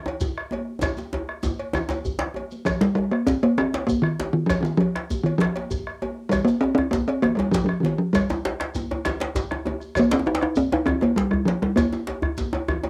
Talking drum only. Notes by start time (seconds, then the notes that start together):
2.65 F3
2.81 G3
2.95 G3
3.11 A#3
3.27 C4
3.43 A#3
3.58 C4
3.87 A#3
4.02 D#3
4.33 D#3
4.46 F3
4.61 D#3 F3
4.77 F3
5.24 D#3
5.38 F3
6.29 G3
6.45 A#3
6.61 C4
6.75 C4
6.91 A#3
7.08 C4
7.22 A#3
7.35 G3 A#3
7.51 F3
7.64 F3 G3
7.80 D#3 F3
7.98 F3
8.13 G3
9.99 A#3
10.13 C4
10.27 D#4
10.43 D#4
10.57 C4
10.73 D#4
10.86 C4
11.02 A#3
11.16 G3
11.31 G3
11.45 F3
11.62 G3
11.76 A#3